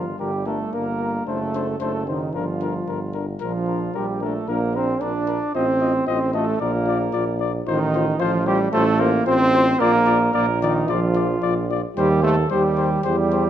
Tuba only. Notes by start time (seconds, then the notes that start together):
Already playing: G1
0.21 G1
0.75 G1
1.27 F#1
1.81 F#1
2.35 G1
2.88 G1
3.41 A#1
3.95 A#1
4.48 A#1
5.02 A#1
5.55 A1
6.08 A1
6.61 A#1
7.14 A#1
7.67 A1
8.20 A1
8.73 A1
9.27 A1
9.81 A#1
10.34 A#1
10.89 A#1
11.43 A#1
11.97 D#2
12.51 D#2
13.06 E2